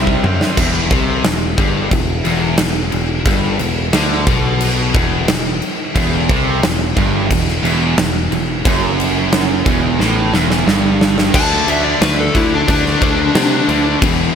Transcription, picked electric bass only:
0.00 0.17 C2 medium
0.23 0.50 F#2 medium
0.57 0.89 E1 medium
0.91 1.22 C2 medium
1.24 1.56 E1 medium
1.58 1.89 G1 medium
1.91 2.23 E1 medium
2.25 2.57 E1 medium
2.59 2.90 E1 medium
2.93 3.24 E1 medium
3.26 3.57 G1 medium
3.60 3.91 E1 medium
3.93 4.25 D2 loud
4.27 4.91 B1 loud
4.95 5.26 E1 medium
5.28 5.60 E1 medium
5.95 6.27 E1 loud
6.29 6.61 C2 medium
6.63 6.94 E1 medium
6.97 7.28 G1 medium
7.31 7.62 E1 medium
7.63 7.95 E1 medium
7.97 8.29 E1 medium
8.31 8.62 E1 medium
8.65 9.62 F#1 medium
9.66 9.97 E1 medium
9.99 10.31 A1 loud
10.32 10.64 E1 loud
10.66 11.29 G1 medium
11.34 11.61 D2 loud
11.67 11.94 D2 medium
12.01 12.28 D2 medium
12.35 12.61 D2 medium
12.68 12.95 D2 loud
13.01 13.28 D2 medium
13.35 13.61 C3 medium
13.68 13.95 D2 medium
14.02 14.28 E1 medium

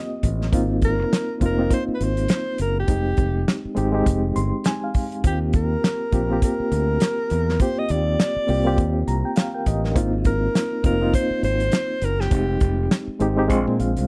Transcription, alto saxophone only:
0.85 1.38 A#4 medium
1.45 1.71 A#4 medium
1.74 1.84 C5 medium
1.95 2.05 B4 medium
2.04 2.61 C5 loud
2.61 2.76 A#4 medium
2.80 3.62 G4 medium
5.27 5.39 G4 medium
5.56 6.39 A#4 medium
6.44 7.62 A#4 medium
7.61 7.80 C5 medium
7.79 7.93 D#5 medium
7.91 9.08 D5 medium
10.27 10.81 A#4 medium
10.86 11.12 A#4 medium
11.15 11.42 C5 loud
11.44 12.06 C5 loud
12.04 12.22 A#4 medium
12.21 13.09 G4 medium

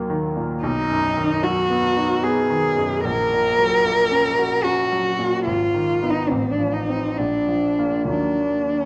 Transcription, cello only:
0.64 1.45 D#4 medium
1.43 2.25 F#4 medium
2.23 3.03 G#4 medium
3.05 4.65 A#4 medium
4.64 5.45 F#4 medium
5.45 6.12 F4 medium
6.10 6.32 D#4 medium
6.30 6.52 C4 medium
6.51 6.74 D4 soft
6.73 7.19 D#4 soft
7.18 8.09 D4 medium
8.09 8.85 D4 soft

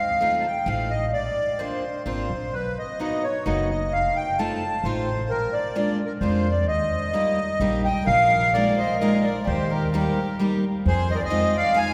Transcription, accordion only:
0.00 0.47 F5 medium
0.40 0.45 A5 soft
0.46 0.68 G5 medium
0.68 0.92 F5 medium
0.90 1.11 D#5 medium
1.13 1.61 D5 medium
1.59 2.02 C5 medium
2.07 2.55 C5 medium
2.54 2.78 B4 medium
2.79 2.99 D#5 medium
3.01 3.25 D#5 medium
3.24 3.47 C#5 medium
3.46 3.69 D#5 medium
3.70 3.93 D#5 medium
3.93 4.17 F5 medium
4.16 4.39 G5 medium
4.39 4.86 A5 medium
4.84 5.31 C5 medium
5.30 5.54 A#4 medium
5.53 5.75 D5 medium
5.77 5.99 D5 medium
6.06 6.13 A#4 medium
6.21 6.53 C5 medium
6.51 6.66 D5 medium
6.68 7.82 D#5 medium
7.84 8.06 G5 medium
8.07 8.56 F5 loud
8.54 8.79 D5 loud
8.78 8.98 D#5 medium
8.99 9.25 D#5 medium
9.24 9.48 D5 medium
9.47 9.72 C5 loud
9.70 9.90 A#4 medium
9.92 10.36 A#4 medium
10.87 11.11 C5 loud
11.11 11.17 D#5 medium
11.16 11.22 D5 medium
11.25 11.57 D#5 loud
11.57 11.78 F5 loud
11.77 11.94 G#5 loud

